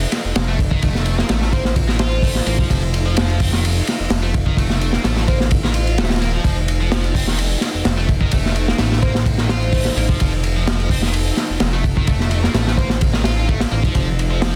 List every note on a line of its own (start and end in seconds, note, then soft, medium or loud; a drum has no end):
0.00 14.56 F3 medium
0.00 14.56 D#4 medium
0.00 6.43 F4 medium
0.12 snare soft
0.12 ride medium
0.25 0.33 F1 soft
0.36 0.77 F1 medium
0.36 snare loud
0.36 ride loud
0.48 0.59 A3 medium
0.59 kick medium
0.59 ride medium
0.71 0.82 D#3 loud
0.71 kick loud
0.82 1.24 F1 loud
0.82 1.17 A3 medium
0.82 kick loud
0.82 ride medium
0.95 snare soft
1.05 ride medium
1.18 1.27 A#3 medium
1.18 snare medium
1.29 2.41 A1 loud
1.29 1.41 A3 medium
1.29 snare loud
1.29 ride medium
1.42 1.52 A3 medium
1.42 snare medium
1.53 1.62 A#3 loud
1.53 1.74 C5 medium
1.53 kick medium
1.53 ride medium
1.65 snare medium
1.76 kick loud
1.76 ride medium
1.88 1.97 D#3 medium
1.88 snare soft
1.99 2.22 F4 loud
1.99 2.66 C5 loud
1.99 snare loud
1.99 ride medium
2.11 ride soft
2.22 2.35 A3 medium
2.22 kick medium
2.22 open hi-hat medium
2.35 snare soft
2.46 2.60 A1 medium
2.46 2.56 A#3 loud
2.46 ride medium
2.59 2.66 C2 medium
2.59 2.69 F3 medium
2.59 kick loud
2.70 3.82 F1 loud
2.70 2.82 F3 medium
2.70 kick loud
2.70 ride medium
2.94 ride medium
3.06 3.16 F3 medium
3.17 3.39 F3 medium
3.17 snare loud
3.17 ride medium
3.30 ride soft
3.40 3.50 C4 medium
3.40 kick medium
3.40 open hi-hat medium
3.53 3.63 D#3 loud
3.53 snare soft
3.65 ride medium
3.87 snare soft
3.87 ride medium
4.00 4.08 F1 soft
4.10 4.52 F1 medium
4.10 snare loud
4.10 ride medium
4.23 4.33 A3 medium
4.34 kick loud
4.34 ride medium
4.46 4.57 D#3 loud
4.46 kick loud
4.57 4.99 F1 loud
4.57 4.92 A3 medium
4.57 kick loud
4.57 ride medium
4.70 snare soft
4.81 ride medium
4.93 5.02 A#3 medium
4.93 snare medium
5.04 6.00 A1 loud
5.04 5.16 A3 medium
5.04 snare loud
5.04 ride medium
5.17 5.27 A3 medium
5.17 snare medium
5.28 5.37 A#3 loud
5.28 5.49 C5 loud
5.28 kick medium
5.28 ride medium
5.40 snare medium
5.51 kick loud
5.51 ride medium
5.51 swell medium
5.64 5.72 D#3 medium
5.64 snare soft
5.74 5.97 F4 loud
5.74 ride medium
5.87 ride soft
5.98 6.39 D#1 loud
5.98 6.10 A3 medium
5.98 snare loud
5.98 ride medium
6.04 snare medium
6.04 ride medium
6.10 snare loud
6.10 ride medium
6.16 snare medium
6.16 ride medium
6.21 6.31 A#3 loud
6.21 snare soft
6.21 ride medium
6.34 6.43 F3 medium
6.44 7.56 F1 loud
6.44 6.57 F3 medium
6.44 13.93 A4 medium
6.44 kick loud
6.44 ride medium
6.68 ride medium
6.81 6.91 F3 medium
6.92 7.14 F3 medium
6.92 snare loud
6.92 ride medium
7.04 ride soft
7.15 7.25 C4 medium
7.15 kick medium
7.15 open hi-hat medium
7.27 7.38 D#3 loud
7.27 snare soft
7.38 ride medium
7.61 snare soft
7.61 ride medium
7.75 7.83 F1 soft
7.85 8.27 F1 medium
7.85 snare loud
7.85 ride medium
7.97 8.08 A3 medium
8.09 kick loud
8.09 ride medium
8.21 8.32 D#3 loud
8.21 kick loud
8.31 8.74 F1 loud
8.31 8.67 A3 medium
8.31 kick loud
8.31 ride loud
8.46 snare soft
8.56 ride medium
8.68 8.77 A#3 medium
8.68 snare medium
8.78 9.91 A1 loud
8.78 8.90 A3 medium
8.78 snare loud
8.78 ride medium
8.92 9.02 A3 medium
8.92 snare medium
9.02 9.12 A#3 loud
9.02 9.23 C5 loud
9.02 kick medium
9.02 ride medium
9.15 snare medium
9.26 kick loud
9.26 ride medium
9.38 9.47 D#3 medium
9.38 snare soft
9.49 9.72 F4 loud
9.49 10.15 C5 loud
9.49 snare loud
9.49 ride medium
9.62 ride soft
9.73 9.85 A3 medium
9.73 kick medium
9.73 open hi-hat medium
9.85 snare soft
9.97 10.11 A1 medium
9.97 10.06 A#3 loud
9.97 ride medium
10.09 10.17 C2 medium
10.09 10.19 F3 medium
10.09 kick medium
10.20 11.32 F1 loud
10.20 10.32 F3 medium
10.20 kick loud
10.20 ride medium
10.43 ride medium
10.56 10.66 F3 medium
10.67 10.89 F3 medium
10.67 snare loud
10.67 ride medium
10.80 ride soft
10.89 11.00 C4 medium
10.89 kick medium
10.89 open hi-hat medium
11.02 11.13 D#3 loud
11.02 snare soft
11.13 ride medium
11.37 snare soft
11.37 ride medium
11.50 11.58 F1 soft
11.60 12.02 F1 medium
11.60 snare loud
11.60 ride medium
11.73 11.84 A3 medium
11.84 kick loud
11.84 ride medium
11.97 12.07 D#3 loud
11.97 kick loud
12.07 12.49 F1 loud
12.07 12.42 A3 medium
12.07 kick loud
12.07 ride medium
12.20 snare soft
12.31 ride medium
12.43 12.52 A#3 medium
12.43 snare medium
12.54 13.66 A1 loud
12.54 12.66 A3 medium
12.54 snare loud
12.54 ride medium
12.67 12.77 A3 medium
12.67 snare medium
12.77 12.88 A#3 loud
12.77 12.99 C5 loud
12.77 kick medium
12.77 ride medium
12.90 snare medium
13.01 kick loud
13.01 ride medium
13.14 13.22 D#3 medium
13.14 snare medium
13.24 13.47 F4 loud
13.24 snare loud
13.24 ride medium
13.48 13.60 A3 medium
13.48 kick medium
13.48 ride medium
13.60 snare loud
13.60 ride medium
13.72 13.85 A1 medium
13.72 13.81 A#3 loud
13.83 13.91 C2 medium
13.83 13.94 F3 medium
13.83 kick medium
13.83 ride medium
13.95 14.56 F1 loud
13.95 14.07 F3 medium
13.95 14.56 F4 medium
13.95 kick loud
13.95 ride medium
14.19 ride medium
14.31 14.41 F3 medium
14.42 14.56 F3 medium
14.42 snare loud
14.42 ride medium